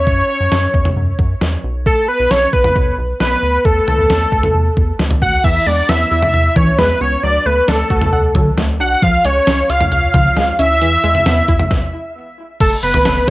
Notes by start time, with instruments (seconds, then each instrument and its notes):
Already playing: analog synth lead C#5
0.07 analog synth bass F#2, kick
0.40 analog synth bass F#2
0.52 analog synth bass F#2, snare
0.74 analog synth bass E2, kick
0.85 mid tom
0.96 analog synth bass F#2
1.19 analog synth bass F#2, kick
1.41 analog synth bass E2, snare
1.64 analog synth bass B1
1.86 analog synth lead A4, kick
2.08 analog synth lead B4
2.20 analog synth bass B1
2.31 analog synth bass B1, analog synth lead C#5, snare
2.53 analog synth bass B1, analog synth lead B4, kick
2.64 mid tom
2.76 analog synth bass B1, kick
2.98 analog synth bass B1
3.20 analog synth bass B1, analog synth lead B4, snare
3.43 analog synth bass D2
3.65 analog synth bass E2, analog synth lead A4, kick
3.88 mid tom
3.99 analog synth bass E2
4.10 analog synth bass E2, snare
4.32 analog synth bass D2, kick
4.43 mid tom
4.55 analog synth bass E2
4.77 analog synth bass E2, kick
4.99 analog synth bass D2, snare
5.11 mid tom
5.22 analog synth bass D2, analog synth lead F#5, kick
5.44 analog synth bass E2, synth pluck E3, analog synth lead E5, kick, crash
5.67 analog synth bass E2, synth pluck G#3, analog synth lead D5
5.89 analog synth bass E2, synth pluck B3, analog synth lead E5, snare
6.11 analog synth bass E2, synth pluck E4, analog synth lead E5
6.22 mid tom
6.34 analog synth bass E2, synth pluck E5
6.56 analog synth bass E3, synth pluck E3, analog synth lead C#5, kick, mid tom
6.78 analog synth bass E2, synth pluck G#3, analog synth lead B4, snare
7.01 analog synth bass C#2, synth pluck B3, analog synth lead C#5
7.23 analog synth bass D2, synth pluck F#3, analog synth lead D5
7.46 analog synth bass D2, synth pluck A3, analog synth lead B4
7.68 analog synth bass D2, synth pluck D4, analog synth lead A4, snare
7.90 analog synth bass D2, synth pluck F#4, kick
8.02 mid tom
8.13 analog synth bass D2, synth pluck F#5
8.35 analog synth bass D3, synth pluck F#3, kick, mid tom
8.58 analog synth bass D2, synth pluck A3, snare
8.80 analog synth bass B1, synth pluck D4, analog synth lead F#5
9.02 analog synth bass C#2, synth pluck F3, analog synth lead F5, kick, closed hi-hat
9.25 analog synth bass C#2, synth pluck G#3, analog synth lead C#5, closed hi-hat
9.47 analog synth bass C#2, synth pluck C#4, snare, closed hi-hat
9.70 analog synth bass C#2, synth pluck F4, analog synth lead F5, closed hi-hat
9.81 mid tom
9.92 analog synth bass C#2, synth pluck F5, analog synth lead F5, closed hi-hat
10.14 analog synth bass C#3, synth pluck F3, kick, closed hi-hat, mid tom
10.37 analog synth bass C#2, synth pluck G#3, snare, closed hi-hat
10.59 analog synth bass D2, synth pluck C#4, analog synth lead E5, closed hi-hat
10.81 analog synth bass E2, synth pluck E3, closed hi-hat
11.04 analog synth bass E2, synth pluck G#3, closed hi-hat
11.15 mid tom
11.26 analog synth bass E2, synth pluck B3, snare, closed hi-hat
11.48 analog synth bass E2, synth pluck E4, kick, closed hi-hat
11.60 mid tom
11.71 kick, snare
12.61 analog synth bass F#1, analog synth lead A4, kick, closed hi-hat, crash
12.83 analog synth bass F#1, analog synth lead B4, closed hi-hat
12.94 mid tom
13.05 analog synth bass F#1, snare, closed hi-hat